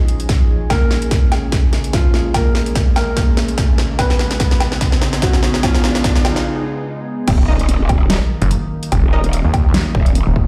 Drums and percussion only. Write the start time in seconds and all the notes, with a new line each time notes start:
0.08 closed hi-hat
0.20 closed hi-hat
0.29 kick, snare, closed hi-hat
0.70 kick, snare, closed hi-hat, low woodblock
0.91 snare
1.02 closed hi-hat
1.11 kick, snare, closed hi-hat
1.32 snare, closed hi-hat, low woodblock
1.52 kick, snare, closed hi-hat
1.73 snare, closed hi-hat
1.84 closed hi-hat
1.93 kick, snare, closed hi-hat
2.14 snare
2.34 kick, snare, closed hi-hat, low woodblock
2.55 snare
2.66 closed hi-hat
2.75 kick, snare, closed hi-hat
2.96 snare, closed hi-hat, low woodblock
3.17 kick, snare, closed hi-hat
3.37 snare, closed hi-hat
3.48 closed hi-hat
3.58 kick, snare, closed hi-hat
3.78 snare
3.99 kick, snare, closed hi-hat, low woodblock
4.10 snare
4.19 snare
4.31 snare, closed hi-hat
4.40 kick, snare, closed hi-hat
4.51 snare
4.60 snare, closed hi-hat, low woodblock
4.72 snare
4.81 kick, snare, closed hi-hat
4.92 snare
5.02 snare, closed hi-hat
5.13 snare, closed hi-hat
5.22 kick, snare, closed hi-hat
5.33 snare
5.43 snare
5.54 snare
5.63 kick, snare, closed hi-hat, low woodblock
5.75 snare
5.84 snare
5.95 snare, closed hi-hat
6.04 kick, snare, closed hi-hat
6.16 snare
6.25 snare, closed hi-hat, low woodblock
6.36 snare
7.28 kick, closed hi-hat, crash, low woodblock
7.59 closed hi-hat
7.69 closed hi-hat
7.89 kick, closed hi-hat, low woodblock
8.10 snare, closed hi-hat
8.42 closed hi-hat
8.51 closed hi-hat
8.83 closed hi-hat
8.92 kick, closed hi-hat, low woodblock
9.24 closed hi-hat
9.33 closed hi-hat
9.54 kick, closed hi-hat, low woodblock
9.74 snare, closed hi-hat
9.95 kick
10.06 closed hi-hat
10.15 closed hi-hat
10.36 kick